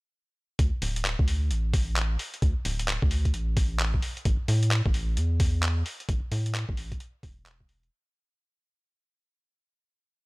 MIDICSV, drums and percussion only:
0, 0, Header, 1, 2, 480
1, 0, Start_track
1, 0, Tempo, 458015
1, 619, Time_signature, 4, 2, 24, 8
1, 10748, End_track
2, 0, Start_track
2, 0, Title_t, "Drums"
2, 619, Note_on_c, 9, 36, 110
2, 619, Note_on_c, 9, 42, 63
2, 723, Note_off_c, 9, 42, 0
2, 724, Note_off_c, 9, 36, 0
2, 859, Note_on_c, 9, 46, 98
2, 963, Note_off_c, 9, 46, 0
2, 1009, Note_on_c, 9, 42, 63
2, 1099, Note_off_c, 9, 42, 0
2, 1099, Note_on_c, 9, 39, 106
2, 1099, Note_on_c, 9, 42, 64
2, 1203, Note_off_c, 9, 39, 0
2, 1203, Note_off_c, 9, 42, 0
2, 1249, Note_on_c, 9, 36, 103
2, 1339, Note_on_c, 9, 46, 97
2, 1354, Note_off_c, 9, 36, 0
2, 1443, Note_off_c, 9, 46, 0
2, 1579, Note_on_c, 9, 42, 60
2, 1684, Note_off_c, 9, 42, 0
2, 1819, Note_on_c, 9, 36, 103
2, 1819, Note_on_c, 9, 46, 100
2, 1923, Note_off_c, 9, 36, 0
2, 1924, Note_off_c, 9, 46, 0
2, 2059, Note_on_c, 9, 39, 113
2, 2059, Note_on_c, 9, 42, 60
2, 2164, Note_off_c, 9, 39, 0
2, 2164, Note_off_c, 9, 42, 0
2, 2299, Note_on_c, 9, 46, 88
2, 2404, Note_off_c, 9, 46, 0
2, 2449, Note_on_c, 9, 42, 37
2, 2538, Note_off_c, 9, 42, 0
2, 2538, Note_on_c, 9, 42, 63
2, 2539, Note_on_c, 9, 36, 119
2, 2643, Note_off_c, 9, 36, 0
2, 2643, Note_off_c, 9, 42, 0
2, 2778, Note_on_c, 9, 46, 102
2, 2883, Note_off_c, 9, 46, 0
2, 2929, Note_on_c, 9, 42, 60
2, 3018, Note_off_c, 9, 42, 0
2, 3018, Note_on_c, 9, 39, 114
2, 3018, Note_on_c, 9, 42, 63
2, 3123, Note_off_c, 9, 39, 0
2, 3123, Note_off_c, 9, 42, 0
2, 3169, Note_on_c, 9, 36, 106
2, 3259, Note_on_c, 9, 46, 90
2, 3274, Note_off_c, 9, 36, 0
2, 3363, Note_off_c, 9, 46, 0
2, 3409, Note_on_c, 9, 36, 59
2, 3409, Note_on_c, 9, 42, 32
2, 3498, Note_off_c, 9, 42, 0
2, 3498, Note_on_c, 9, 42, 60
2, 3514, Note_off_c, 9, 36, 0
2, 3603, Note_off_c, 9, 42, 0
2, 3738, Note_on_c, 9, 46, 104
2, 3739, Note_on_c, 9, 36, 107
2, 3843, Note_off_c, 9, 36, 0
2, 3843, Note_off_c, 9, 46, 0
2, 3978, Note_on_c, 9, 39, 116
2, 3978, Note_on_c, 9, 42, 60
2, 4083, Note_off_c, 9, 39, 0
2, 4083, Note_off_c, 9, 42, 0
2, 4129, Note_on_c, 9, 36, 62
2, 4218, Note_on_c, 9, 46, 90
2, 4234, Note_off_c, 9, 36, 0
2, 4323, Note_off_c, 9, 46, 0
2, 4369, Note_on_c, 9, 42, 36
2, 4458, Note_off_c, 9, 42, 0
2, 4458, Note_on_c, 9, 42, 63
2, 4459, Note_on_c, 9, 36, 119
2, 4563, Note_off_c, 9, 36, 0
2, 4563, Note_off_c, 9, 42, 0
2, 4698, Note_on_c, 9, 46, 100
2, 4803, Note_off_c, 9, 46, 0
2, 4849, Note_on_c, 9, 42, 61
2, 4938, Note_off_c, 9, 42, 0
2, 4938, Note_on_c, 9, 39, 118
2, 4938, Note_on_c, 9, 42, 62
2, 5043, Note_off_c, 9, 39, 0
2, 5043, Note_off_c, 9, 42, 0
2, 5090, Note_on_c, 9, 36, 107
2, 5178, Note_on_c, 9, 46, 87
2, 5194, Note_off_c, 9, 36, 0
2, 5283, Note_off_c, 9, 46, 0
2, 5418, Note_on_c, 9, 42, 64
2, 5523, Note_off_c, 9, 42, 0
2, 5658, Note_on_c, 9, 46, 106
2, 5659, Note_on_c, 9, 36, 114
2, 5763, Note_off_c, 9, 46, 0
2, 5764, Note_off_c, 9, 36, 0
2, 5899, Note_on_c, 9, 39, 119
2, 5899, Note_on_c, 9, 42, 59
2, 6003, Note_off_c, 9, 39, 0
2, 6003, Note_off_c, 9, 42, 0
2, 6139, Note_on_c, 9, 46, 89
2, 6243, Note_off_c, 9, 46, 0
2, 6290, Note_on_c, 9, 42, 35
2, 6379, Note_off_c, 9, 42, 0
2, 6379, Note_on_c, 9, 36, 122
2, 6379, Note_on_c, 9, 42, 65
2, 6483, Note_off_c, 9, 42, 0
2, 6484, Note_off_c, 9, 36, 0
2, 6619, Note_on_c, 9, 46, 96
2, 6724, Note_off_c, 9, 46, 0
2, 6770, Note_on_c, 9, 42, 63
2, 6859, Note_off_c, 9, 42, 0
2, 6859, Note_on_c, 9, 39, 124
2, 6859, Note_on_c, 9, 42, 61
2, 6964, Note_off_c, 9, 39, 0
2, 6964, Note_off_c, 9, 42, 0
2, 7009, Note_on_c, 9, 36, 107
2, 7099, Note_on_c, 9, 46, 91
2, 7114, Note_off_c, 9, 36, 0
2, 7203, Note_off_c, 9, 46, 0
2, 7249, Note_on_c, 9, 36, 64
2, 7250, Note_on_c, 9, 42, 34
2, 7339, Note_off_c, 9, 42, 0
2, 7339, Note_on_c, 9, 42, 66
2, 7354, Note_off_c, 9, 36, 0
2, 7443, Note_off_c, 9, 42, 0
2, 7579, Note_on_c, 9, 36, 118
2, 7579, Note_on_c, 9, 46, 97
2, 7683, Note_off_c, 9, 36, 0
2, 7684, Note_off_c, 9, 46, 0
2, 7819, Note_on_c, 9, 39, 121
2, 7819, Note_on_c, 9, 42, 63
2, 7924, Note_off_c, 9, 39, 0
2, 7924, Note_off_c, 9, 42, 0
2, 7970, Note_on_c, 9, 36, 62
2, 8058, Note_on_c, 9, 46, 82
2, 8074, Note_off_c, 9, 36, 0
2, 8163, Note_off_c, 9, 46, 0
2, 8209, Note_on_c, 9, 42, 36
2, 8314, Note_off_c, 9, 42, 0
2, 10748, End_track
0, 0, End_of_file